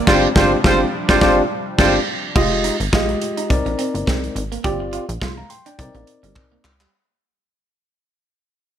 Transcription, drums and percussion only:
0.07 kick loud
0.07 snare loud
0.07 crash medium
0.36 kick loud
0.36 snare loud
0.64 kick loud
0.64 snare loud
1.09 kick loud
1.09 snare loud
1.21 kick loud
1.21 snare loud
1.79 kick loud
1.79 snare loud
1.79 crash medium
2.36 kick loud
2.36 crash medium
2.64 closed hi-hat medium
2.80 closed hi-hat medium
2.93 kick loud
2.93 snare loud
3.09 closed hi-hat soft
3.22 closed hi-hat medium
3.37 closed hi-hat medium
3.50 kick loud
3.50 closed hi-hat medium
3.66 closed hi-hat soft
3.79 closed hi-hat medium
3.95 closed hi-hat soft
4.07 kick loud
4.07 snare loud
4.24 closed hi-hat soft
4.36 closed hi-hat medium
4.52 closed hi-hat medium
4.64 kick loud
4.64 closed hi-hat medium
4.93 closed hi-hat medium
5.09 closed hi-hat medium
5.22 kick loud
5.22 snare loud
5.50 closed hi-hat medium
5.66 closed hi-hat medium
5.79 kick loud
5.79 closed hi-hat loud
5.95 closed hi-hat soft
6.07 closed hi-hat medium
6.24 closed hi-hat medium
6.36 kick loud
6.36 clap medium
6.65 clap medium
6.81 clap medium

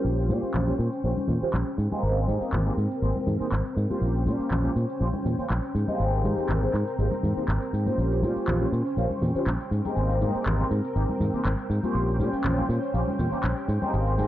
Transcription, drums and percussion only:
0.05 tambourine soft
0.18 tambourine soft
0.29 tambourine medium
0.29 high conga medium
0.43 tambourine soft
0.54 clap loud
0.54 tambourine soft
0.54 low conga medium
0.68 tambourine soft
0.68 high conga medium
0.79 tambourine medium
0.92 tambourine soft
1.04 tambourine soft
1.17 high conga medium
1.28 tambourine medium
1.28 low conga medium
1.42 tambourine soft
1.54 clap loud
1.54 tambourine soft
1.54 high conga medium
1.67 tambourine soft
1.78 tambourine medium
1.92 tambourine soft
1.92 high conga medium
2.04 tambourine soft
2.17 tambourine soft
2.27 tambourine medium
2.27 high conga medium
2.41 tambourine soft
2.52 clap loud
2.52 tambourine soft
2.52 low conga medium
2.66 tambourine soft
2.78 tambourine medium
2.91 tambourine soft
3.03 tambourine soft
3.15 high conga medium
3.27 tambourine medium
3.27 low conga medium
3.40 tambourine soft
3.52 clap loud
3.52 tambourine soft
3.52 high conga medium
3.66 tambourine soft
3.77 tambourine medium
3.89 tambourine soft
3.89 high conga medium
4.02 tambourine soft
4.15 tambourine soft
4.26 tambourine medium
4.26 high conga medium
4.40 tambourine soft
4.51 clap loud
4.51 tambourine soft
4.51 low conga medium
4.64 tambourine soft
4.64 high conga medium
4.75 tambourine medium
4.88 tambourine medium
4.88 tambourine soft
4.99 tambourine soft
5.01 tambourine soft
5.13 high conga medium
5.25 tambourine medium
5.25 low conga medium
5.38 tambourine soft
5.50 clap loud
5.50 tambourine soft
5.50 high conga medium
5.64 tambourine soft
5.75 tambourine medium
5.87 tambourine medium
5.87 tambourine soft
5.87 high conga medium
6.00 tambourine soft
6.13 tambourine soft
6.24 tambourine medium
6.24 high conga medium
6.24 low conga medium
6.37 tambourine soft
6.49 clap loud
6.49 tambourine soft
6.49 low conga medium
6.62 tambourine soft
6.62 high conga medium
6.74 clap soft
6.74 tambourine medium
6.88 tambourine soft
6.99 tambourine soft
7.11 tambourine soft
7.11 high conga medium
7.23 tambourine medium
7.23 low conga medium
7.37 tambourine medium
7.37 tambourine soft
7.48 clap loud
7.48 tambourine soft
7.48 high conga medium
7.62 tambourine soft
7.73 tambourine medium
7.86 tambourine soft
7.86 high conga medium
7.98 tambourine soft
8.12 tambourine soft
8.22 tambourine medium
8.22 high conga medium
8.36 tambourine medium
8.36 tambourine soft
8.48 clap loud
8.48 tambourine soft
8.48 low conga medium
8.61 tambourine soft
8.61 high conga medium
8.72 tambourine medium
8.85 tambourine medium
8.85 tambourine soft
8.97 tambourine soft
9.10 high conga medium
9.22 tambourine medium
9.22 low conga medium
9.34 tambourine medium
9.34 tambourine soft
9.47 clap loud
9.47 tambourine soft
9.47 high conga medium
9.60 tambourine soft
9.71 tambourine medium
9.85 tambourine soft
9.85 high conga medium
9.97 tambourine soft
10.10 tambourine soft
10.21 tambourine medium
10.21 high conga medium
10.34 tambourine soft
10.46 clap loud
10.46 tambourine soft
10.46 low conga medium
10.60 tambourine soft
10.60 high conga medium
10.71 tambourine medium
10.84 tambourine soft
10.96 tambourine soft
11.09 high conga medium
11.20 tambourine medium
11.20 low conga medium
11.34 tambourine soft
11.45 clap loud
11.45 tambourine soft
11.45 high conga medium
11.59 tambourine soft
11.71 tambourine medium
11.83 tambourine soft
11.83 high conga medium
11.95 tambourine soft
12.08 tambourine soft
12.19 tambourine medium
12.19 high conga medium
12.33 tambourine soft
12.44 clap loud
12.44 tambourine soft
12.44 low conga medium
12.58 tambourine soft
12.58 high conga medium
12.69 tambourine medium
12.83 tambourine soft
12.94 tambourine soft
13.08 high conga medium
13.19 tambourine medium
13.19 low conga medium
13.32 tambourine soft
13.43 clap loud
13.43 tambourine soft
13.43 high conga medium
13.57 tambourine soft
13.68 tambourine medium
13.82 tambourine soft
13.82 high conga medium
13.94 tambourine soft
14.07 tambourine soft
14.18 tambourine medium
14.18 high conga medium

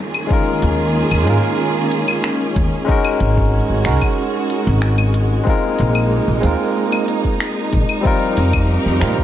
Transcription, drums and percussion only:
0.14 claves medium
0.14 shaker soft
0.31 kick loud
0.31 shaker soft
0.62 closed hi-hat medium
0.62 shaker medium
0.79 shaker soft
0.95 shaker soft
1.11 claves medium
1.27 closed hi-hat medium
1.27 shaker medium
1.44 shaker soft
1.60 shaker soft
1.91 closed hi-hat loud
1.91 shaker medium
2.08 claves medium
2.08 shaker soft
2.24 finger snap medium
2.24 shaker soft
2.56 kick loud
2.56 closed hi-hat medium
2.56 shaker medium
2.73 shaker soft
2.89 kick loud
2.89 shaker soft
3.05 claves medium
3.20 closed hi-hat medium
3.20 shaker medium
3.37 kick loud
3.37 shaker soft
3.53 shaker soft
3.85 finger snap medium
3.85 closed hi-hat medium
3.85 shaker medium
4.02 kick loud
4.02 claves medium
4.02 shaker soft
4.18 shaker soft
4.50 closed hi-hat medium
4.50 shaker medium
4.67 shaker soft
4.82 finger snap medium
4.82 shaker soft
4.98 claves medium
5.14 closed hi-hat medium
5.14 shaker medium
5.31 shaker soft
5.47 kick loud
5.47 shaker soft
5.79 closed hi-hat medium
5.79 shaker medium
5.95 claves medium
5.95 shaker soft
6.11 shaker soft
6.43 closed hi-hat medium
6.43 shaker medium
6.60 shaker soft
6.76 shaker soft
6.92 claves medium
7.08 closed hi-hat medium
7.08 shaker medium
7.25 kick medium
7.25 shaker soft
7.40 finger snap medium
7.40 shaker soft
7.73 kick loud
7.73 closed hi-hat medium
7.73 shaker medium
7.89 claves medium
7.89 shaker soft
8.05 kick loud
8.05 shaker soft
8.37 closed hi-hat medium
8.37 shaker medium
8.53 kick loud
8.53 claves medium
8.53 shaker soft
8.69 shaker soft
9.01 finger snap medium
9.01 closed hi-hat medium
9.01 shaker medium
9.18 kick loud
9.18 shaker soft

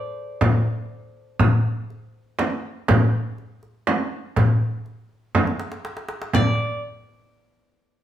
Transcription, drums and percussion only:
0.41 frame drum medium
0.41 darbuka dum medium
1.39 frame drum medium
1.39 darbuka dum medium
1.90 darbuka ka soft
2.39 darbuka tek medium
2.39 frame drum medium
2.88 frame drum medium
2.88 darbuka dum medium
3.38 darbuka ka soft
3.63 darbuka ka soft
3.87 darbuka tek medium
3.87 frame drum medium
4.36 frame drum medium
4.36 darbuka dum medium
4.86 darbuka ka soft
5.35 darbuka tek medium
5.35 frame drum medium
5.47 darbuka ka medium
5.60 darbuka tek medium
5.72 darbuka ka medium
5.85 darbuka tek medium
5.97 darbuka ka medium
6.09 darbuka tek medium
6.22 darbuka ka medium
6.33 frame drum medium
6.33 darbuka dum medium

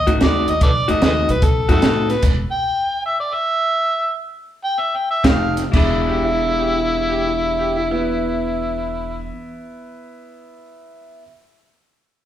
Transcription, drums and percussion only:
0.07 kick medium
0.07 closed hi-hat medium
0.21 snare loud
0.21 closed hi-hat medium
0.48 closed hi-hat medium
0.61 kick loud
0.61 closed hi-hat medium
0.89 closed hi-hat medium
1.02 snare loud
1.02 closed hi-hat medium
1.29 closed hi-hat medium
1.42 kick loud
1.42 closed hi-hat medium
1.69 kick medium
1.69 snare soft
1.69 closed hi-hat medium
1.82 snare loud
1.82 closed hi-hat medium
2.10 snare soft
2.10 closed hi-hat medium
2.23 kick loud
2.23 closed hi-hat medium
2.23 crash medium
5.24 kick medium
5.24 snare loud
5.24 closed hi-hat medium
5.57 snare soft
5.57 closed hi-hat medium
5.73 kick loud
5.73 crash medium

